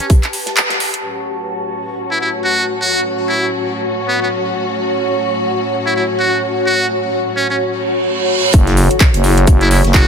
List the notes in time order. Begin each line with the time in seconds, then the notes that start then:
Already playing: G4 B4 A5
0.00 C#4
0.10 kick, closed hi-hat, shaker
0.23 clap, closed hi-hat
0.33 open hi-hat, shaker
0.46 snare, closed hi-hat
0.57 clap, closed hi-hat, shaker
0.70 snare, closed hi-hat
0.80 open hi-hat, shaker
0.94 closed hi-hat
1.04 A2 F#3 C#4 F#4
1.45 C#5
2.11 E4
2.21 E4
2.44 F#4
2.81 F#4
3.28 E4
4.08 B3
4.22 B3
5.86 E4
5.96 E4
6.19 F#4
6.66 F#4
7.36 C#4
7.50 C#4
7.60 reverse cymbal
8.54 F#1 C#3 F#3 A3 F#4, kick, closed hi-hat, impact, shaker
8.67 snare, closed hi-hat
8.77 open hi-hat, shaker
8.91 closed hi-hat
9.00 kick, snare, clap, closed hi-hat, shaker
9.14 F#1, closed hi-hat
9.24 open hi-hat, shaker
9.38 closed hi-hat
9.47 F#1 A5, kick, closed hi-hat, shaker
9.61 E4, closed hi-hat
9.71 E4, open hi-hat, shaker
9.85 F#1, snare, closed hi-hat
9.94 F#4, kick, snare, clap, closed hi-hat, shaker